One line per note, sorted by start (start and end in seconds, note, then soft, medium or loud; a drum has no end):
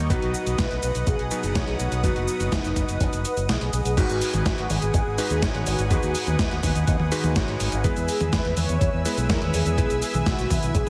0.00 3.93 D#5 medium
0.10 0.21 B1 loud
0.10 1.28 B2 medium
0.10 1.28 F#3 medium
0.10 1.28 B3 medium
0.10 1.28 D#4 medium
0.10 0.60 F#4 loud
0.10 1.28 B4 medium
0.10 3.93 B4 medium
0.10 3.93 F#5 medium
0.10 3.93 D#6 medium
0.10 kick loud
0.10 closed hi-hat medium
0.10 cabasa soft
0.22 0.33 B1 medium
0.22 closed hi-hat soft
0.34 cabasa medium
0.46 0.57 B1 medium
0.46 closed hi-hat soft
0.46 cabasa soft
0.58 0.69 B1 loud
0.58 0.82 B4 loud
0.58 kick loud
0.58 snare loud
0.58 closed hi-hat medium
0.58 cabasa soft
0.71 0.81 B1 medium
0.71 closed hi-hat soft
0.83 0.94 B1 medium
0.83 1.08 B4 loud
0.83 closed hi-hat medium
0.83 cabasa medium
0.95 1.06 B1 medium
0.95 closed hi-hat soft
0.95 cabasa soft
1.07 1.18 B1 loud
1.07 1.76 G#4 loud
1.07 kick loud
1.07 closed hi-hat medium
1.07 cabasa soft
1.19 1.30 B1 medium
1.19 closed hi-hat soft
1.31 1.52 B2 loud
1.31 1.52 F#3 medium
1.31 1.52 B3 medium
1.31 1.52 D#4 medium
1.31 1.52 B4 loud
1.31 closed hi-hat medium
1.31 cabasa medium
1.43 1.54 F#1 medium
1.43 closed hi-hat soft
1.43 cabasa soft
1.55 1.66 B1 loud
1.55 2.01 B2 medium
1.55 2.01 F#3 medium
1.55 2.01 B3 medium
1.55 2.01 D#4 medium
1.55 2.01 C#5 medium
1.55 kick loud
1.55 snare loud
1.55 closed hi-hat medium
1.55 cabasa soft
1.67 1.78 B1 medium
1.67 closed hi-hat soft
1.80 1.90 B1 medium
1.80 1.90 F#4 medium
1.80 closed hi-hat medium
1.80 cabasa medium
1.92 2.02 B1 medium
1.92 closed hi-hat soft
1.92 cabasa soft
2.04 2.14 F#1 loud
2.04 3.22 B2 medium
2.04 3.22 F#3 medium
2.04 3.22 B3 medium
2.04 3.22 D#4 medium
2.04 2.54 F#4 loud
2.04 3.22 B4 medium
2.04 kick loud
2.04 closed hi-hat medium
2.04 cabasa soft
2.16 2.27 F#1 medium
2.16 closed hi-hat soft
2.28 cabasa medium
2.40 2.51 F#1 medium
2.40 closed hi-hat soft
2.40 cabasa soft
2.52 2.63 F#1 loud
2.52 3.69 D#4 medium
2.52 kick loud
2.52 snare loud
2.52 closed hi-hat medium
2.52 cabasa soft
2.64 2.75 F#1 medium
2.64 closed hi-hat soft
2.64 cabasa soft
2.76 2.87 F#1 medium
2.76 kick medium
2.76 closed hi-hat medium
2.76 cabasa medium
2.88 2.99 F#1 medium
2.88 closed hi-hat soft
2.88 cabasa soft
3.00 3.11 F#1 medium
3.00 kick loud
3.00 closed hi-hat loud
3.00 cabasa soft
3.13 3.23 F#1 medium
3.13 closed hi-hat soft
3.13 cabasa soft
3.25 3.36 B4 loud
3.25 closed hi-hat medium
3.25 cabasa medium
3.37 3.48 F#1 medium
3.37 closed hi-hat soft
3.37 cabasa soft
3.49 3.60 B1 loud
3.49 3.94 G#4 loud
3.49 snare loud
3.49 closed hi-hat loud
3.49 cabasa soft
3.61 3.72 B1 medium
3.61 closed hi-hat soft
3.73 3.84 B1 medium
3.73 closed hi-hat medium
3.73 cabasa medium
3.85 3.96 B1 medium
3.85 closed hi-hat soft
3.85 cabasa soft
3.97 4.08 G#1 loud
3.97 5.15 G#2 medium
3.97 5.15 G#3 medium
3.97 5.15 D#4 medium
3.97 5.15 F#4 medium
3.97 4.42 F#4 loud
3.97 5.15 B4 loud
3.97 7.81 B4 medium
3.97 7.81 F#5 medium
3.97 7.81 G#5 medium
3.97 7.81 D#6 medium
3.97 kick loud
3.97 closed hi-hat medium
3.97 crash loud
3.97 cabasa soft
4.09 4.20 G#1 medium
4.09 closed hi-hat soft
4.09 cabasa soft
4.22 open hi-hat loud
4.22 cabasa medium
4.33 4.44 G#1 medium
4.33 closed hi-hat medium
4.33 high tom medium
4.33 cabasa soft
4.46 4.56 G#1 loud
4.46 4.71 F#4 loud
4.46 kick loud
4.46 snare loud
4.46 closed hi-hat medium
4.46 cabasa soft
4.58 4.69 G#1 medium
4.58 closed hi-hat soft
4.70 4.81 G#1 medium
4.70 5.70 G#4 loud
4.70 open hi-hat loud
4.70 high tom medium
4.70 cabasa medium
4.82 4.93 G#1 medium
4.82 closed hi-hat medium
4.82 cabasa soft
4.94 5.05 G#1 loud
4.94 kick loud
4.94 closed hi-hat medium
4.94 cabasa soft
5.06 5.17 G#1 medium
5.18 5.39 G#2 loud
5.18 5.39 G#3 medium
5.18 5.39 D#4 medium
5.18 5.39 F#4 medium
5.18 5.39 B4 loud
5.18 open hi-hat loud
5.18 cabasa medium
5.30 5.41 D#2 medium
5.30 closed hi-hat medium
5.30 cabasa soft
5.42 5.53 G#1 loud
5.42 5.88 G#2 medium
5.42 5.88 G#3 medium
5.42 5.88 D#4 medium
5.42 5.88 F#4 medium
5.42 5.88 C#5 medium
5.42 kick loud
5.42 snare loud
5.42 closed hi-hat medium
5.42 cabasa soft
5.54 5.65 G#1 medium
5.54 closed hi-hat soft
5.54 high tom medium
5.66 5.77 G#1 medium
5.66 6.60 F#4 medium
5.66 open hi-hat loud
5.66 cabasa medium
5.79 5.89 G#1 medium
5.79 closed hi-hat medium
5.79 cabasa soft
5.91 6.02 D#2 loud
5.91 7.09 G#2 medium
5.91 7.09 G#3 medium
5.91 7.09 D#4 medium
5.91 7.09 F#4 medium
5.91 7.09 B4 loud
5.91 kick loud
5.91 closed hi-hat medium
5.91 cabasa soft
6.03 6.14 D#2 medium
6.03 closed hi-hat soft
6.03 cabasa soft
6.15 open hi-hat loud
6.15 cabasa medium
6.27 6.38 D#2 medium
6.27 closed hi-hat medium
6.27 high tom medium
6.27 cabasa soft
6.39 6.50 D#2 loud
6.39 kick loud
6.39 snare loud
6.39 closed hi-hat medium
6.39 cabasa soft
6.51 6.62 D#2 medium
6.51 closed hi-hat soft
6.63 6.74 D#2 loud
6.63 kick medium
6.63 open hi-hat loud
6.63 high tom medium
6.63 cabasa medium
6.75 6.86 D#2 medium
6.75 closed hi-hat medium
6.75 cabasa soft
6.87 6.98 D#2 loud
6.87 kick loud
6.87 closed hi-hat medium
6.87 cabasa soft
7.00 7.11 D#2 medium
7.00 high tom medium
7.12 7.32 G#2 loud
7.12 7.32 G#3 medium
7.12 7.32 D#4 medium
7.12 7.32 F#4 medium
7.12 7.32 B4 loud
7.12 open hi-hat loud
7.12 cabasa medium
7.24 7.35 D#2 medium
7.24 closed hi-hat medium
7.24 high tom medium
7.24 cabasa soft
7.36 7.47 G#1 loud
7.36 7.82 G#2 medium
7.36 7.82 G#3 medium
7.36 7.82 D#4 medium
7.36 7.82 F#4 medium
7.36 7.82 C#5 medium
7.36 kick loud
7.36 snare loud
7.36 closed hi-hat medium
7.36 cabasa soft
7.48 7.59 G#1 medium
7.48 closed hi-hat soft
7.60 7.71 G#1 medium
7.60 open hi-hat loud
7.60 cabasa medium
7.72 7.83 G#1 medium
7.72 closed hi-hat medium
7.72 cabasa soft
7.84 7.95 E2 loud
7.84 9.03 G#3 medium
7.84 9.03 B3 medium
7.84 9.03 E4 medium
7.84 8.34 G#4 loud
7.84 9.03 B4 loud
7.84 10.89 B4 medium
7.84 10.89 E5 medium
7.84 10.89 G#5 medium
7.84 10.89 E6 medium
7.84 kick loud
7.84 closed hi-hat medium
7.84 cabasa soft
7.96 8.07 E2 medium
7.96 closed hi-hat soft
7.96 cabasa soft
8.09 open hi-hat loud
8.09 cabasa medium
8.21 8.31 E2 medium
8.21 closed hi-hat medium
8.21 high tom medium
8.21 cabasa soft
8.33 8.43 E2 loud
8.33 8.58 B4 loud
8.33 kick loud
8.33 snare loud
8.33 closed hi-hat medium
8.33 cabasa soft
8.45 8.56 E2 medium
8.45 closed hi-hat soft
8.57 8.68 E2 medium
8.57 9.07 C#5 loud
8.57 open hi-hat loud
8.57 high tom medium
8.57 cabasa medium
8.69 8.80 E2 medium
8.69 closed hi-hat medium
8.69 cabasa soft
8.81 8.92 E2 loud
8.81 kick loud
8.81 closed hi-hat medium
8.81 cabasa soft
8.93 9.04 E2 medium
9.05 9.26 G#3 loud
9.05 9.26 B3 medium
9.05 9.26 E4 medium
9.05 9.26 B4 loud
9.05 9.17 B4 loud
9.05 open hi-hat loud
9.05 cabasa medium
9.17 9.28 B1 medium
9.17 closed hi-hat medium
9.17 cabasa soft
9.29 9.40 E2 loud
9.29 9.75 G#3 medium
9.29 9.75 B3 medium
9.29 9.75 E4 medium
9.29 9.41 A#4 loud
9.29 9.75 C#5 medium
9.29 kick loud
9.29 snare loud
9.29 closed hi-hat medium
9.29 cabasa soft
9.42 9.52 E2 medium
9.42 closed hi-hat soft
9.42 high tom medium
9.54 9.65 E2 medium
9.54 9.77 G#4 loud
9.54 open hi-hat loud
9.54 cabasa medium
9.66 9.77 E2 medium
9.66 closed hi-hat medium
9.66 cabasa soft
9.78 9.89 B1 loud
9.78 10.89 G#3 medium
9.78 10.89 B3 medium
9.78 10.89 E4 medium
9.78 10.28 G#4 loud
9.78 10.89 B4 loud
9.78 kick loud
9.78 closed hi-hat medium
9.78 cabasa soft
9.90 10.01 B1 medium
9.90 closed hi-hat soft
9.90 cabasa soft
10.02 open hi-hat loud
10.02 cabasa medium
10.14 10.25 B1 medium
10.14 closed hi-hat medium
10.14 high tom medium
10.14 cabasa soft
10.26 10.37 B1 loud
10.26 10.49 F#4 loud
10.26 kick loud
10.26 snare loud
10.26 closed hi-hat medium
10.26 cabasa soft
10.38 10.49 B1 medium
10.38 closed hi-hat soft
10.38 cabasa soft
10.50 10.61 B1 medium
10.50 10.76 E4 medium
10.50 kick medium
10.50 open hi-hat loud
10.50 high tom medium
10.50 cabasa medium
10.63 10.73 B1 medium
10.63 closed hi-hat medium
10.63 cabasa soft
10.75 10.85 B1 loud
10.75 10.89 G#4 loud
10.75 kick loud
10.75 closed hi-hat medium
10.75 cabasa soft